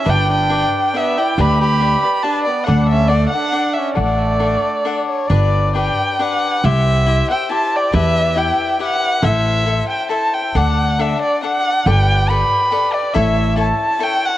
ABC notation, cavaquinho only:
X:1
M:3/4
L:1/8
Q:"Swing" 1/4=138
K:D
V:1 name="Cavaquinho"
[DGBd]2 [DGBd]2 [DGBd] [GBd] | [DGBd]2 [DGBd] [GBd] [DGBd] [GBd] | [DAdf]2 [DAdf] [Adf] [DAdf]2 | [DAdf]2 [DAdf]2 [DAdf]2 |
[K:G] [DGBd]2 [DGBd]2 [DGBd]2 | [EGce]2 [EGce] [Gce] [EGce]2 | [EGBe]2 [EGBe]2 [EGBe]2 | [EAce]2 [EAce]2 [EAce]2 |
[DAdf]2 [DAdf]2 [DAdf]2 | [GABd]2 [GABd]2 [GABd]2 | [EA^ce]2 [EAce]2 [EAce]2 |]